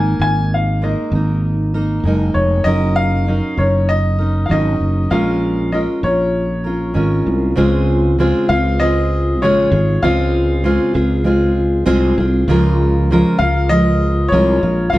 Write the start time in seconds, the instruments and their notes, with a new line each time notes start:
Already playing: fretless electric bass G#1, steel-string acoustic guitar G#3 A#3 D#4 A#4, upright piano G#5
0.19 fretless electric bass G#1, upright piano G#5
0.54 upright piano F5
0.82 steel-string acoustic guitar G#3 A#3 D#4 A#4, upright piano D#5
1.12 fretless electric bass G#1, steel-string acoustic guitar D#4 A#4
1.16 steel-string acoustic guitar A#3
1.74 steel-string acoustic guitar A#3 D#4 A#4
2.04 fretless electric bass F#1, steel-string acoustic guitar G#3 A#3 D#4
2.08 steel-string acoustic guitar A#4
2.34 fretless electric bass F1, upright piano C#5
2.64 fretless electric bass F#1, steel-string acoustic guitar F#3 C#4 D#4 A#4, upright piano D#5
2.96 upright piano F5
3.27 steel-string acoustic guitar F#3 C#4 D#4 A#4
3.57 fretless electric bass F#1, steel-string acoustic guitar C#4 D#4 A#4, upright piano C#5
3.89 upright piano D#5
4.19 steel-string acoustic guitar C#4 D#4 A#4
4.46 steel-string acoustic guitar F#3, upright piano F5
4.50 fretless electric bass G#1, steel-string acoustic guitar C#4 D#4 A#4, upright piano D#5
4.80 fretless electric bass F#1
5.10 fretless electric bass A#1, steel-string acoustic guitar A#2 G#3 C#4 F4 A#4, upright piano F5
5.72 steel-string acoustic guitar G#3 C#4 F4 A#4, upright piano D#5
6.03 fretless electric bass A#1, steel-string acoustic guitar C#4 F4 A#4, upright piano C#5
6.64 steel-string acoustic guitar C#4 F4 A#4
6.94 fretless electric bass G#1, steel-string acoustic guitar G#3 C#4 F4 A#4
7.26 fretless electric bass C2
7.56 fretless electric bass C#2, steel-string acoustic guitar C#3 G#3 C4 F4 G#4
8.19 steel-string acoustic guitar C#3 G#3 C4 F4 G#4
8.49 fretless electric bass C#2, steel-string acoustic guitar C4 F4 G#4, upright piano F5
8.79 steel-string acoustic guitar G#3 C4 F4 G#4, upright piano D#5
9.41 fretless electric bass A#1, steel-string acoustic guitar C#3 G#3 F4 G#4, upright piano C#5
9.72 fretless electric bass G#1, steel-string acoustic guitar F4 G#4
10.02 fretless electric bass C#2, steel-string acoustic guitar C#3 G#3 C4 F4 G#4, upright piano F5
10.64 steel-string acoustic guitar C#3 G#3 C4 F4 G#4
10.94 fretless electric bass C#2, steel-string acoustic guitar C4 F4 G#4
11.24 steel-string acoustic guitar G#3 C4 F4 G#4
11.86 fretless electric bass C2, steel-string acoustic guitar G#3 C4 F4 G#4
12.17 fretless electric bass C2, steel-string acoustic guitar C4 F4 G#4
12.48 fretless electric bass C#2, steel-string acoustic guitar C#3 F3 G#3 F4 A#4
13.11 steel-string acoustic guitar C#3 F3 G#3 F4 A#4
13.39 fretless electric bass C#2, steel-string acoustic guitar F4 A#4, upright piano F5
13.43 steel-string acoustic guitar G#3
13.69 steel-string acoustic guitar F3 G#3 F4, upright piano D#5
13.73 steel-string acoustic guitar A#4
14.28 fretless electric bass C2, upright piano C#5
14.33 steel-string acoustic guitar F3 G#3 F4 A#4
14.62 fretless electric bass A#1, steel-string acoustic guitar G#3 F4 A#4
14.90 fretless electric bass C#2, steel-string acoustic guitar C#3 F3, upright piano F5
14.94 steel-string acoustic guitar G#3 F4 A#4